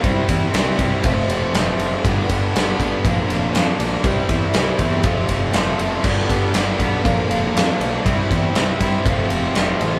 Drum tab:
CC |--------|--------|--------|x-------|
RD |xxxxxxxx|xxxxxxxx|xxxxxxxx|-xxxxxxx|
SD |--o---o-|--o---o-|--o---o-|--o---o-|
BD |oo-oo---|oo-oo---|oo-ooo--|oo-oo---|

CC |--------|
RD |xxxxxxxx|
SD |--o---o-|
BD |oo-oo---|